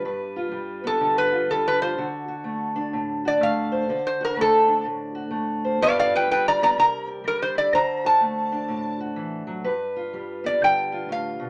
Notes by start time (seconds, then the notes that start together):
Already playing: G3 B3
0.05 G2 B4
0.36 F4
0.51 G3
0.84 B3 A4
1.01 D3
1.18 B4
1.32 F4
1.50 G3 A4
1.68 B4
1.82 F4 C5
1.98 D3 F#4
2.28 F#4
2.44 A3
2.76 D4
2.93 A2
3.25 F#4 D5
3.41 A3 F5
3.72 C5
3.89 D3 C5
4.07 C5
4.21 F#4 A#4
4.37 A3
4.41 A4
4.68 D4
4.85 A2
5.15 F#4
5.31 A3
5.65 C5
5.81 G2 G3 B3 F4 B4 D5 F5
5.99 D5 F5
6.13 F4 B4 G5
6.30 G3 B4 G5
6.48 D5 A#5
6.62 B3 D5 A#5
6.78 C3 A#4 A#5
7.07 G4
7.24 G3 A#4
7.42 C5
7.55 E4 D5
7.72 D3 C5 A#5
8.04 F#4 A5
8.21 A3
8.52 D4
8.68 A2
9.00 F#4
9.16 E3
9.47 F#3
9.64 G2 B4
9.96 F4
10.13 G3
10.44 B3 D5
10.61 D3 G5
10.92 F4
11.09 A2 F5
11.39 B2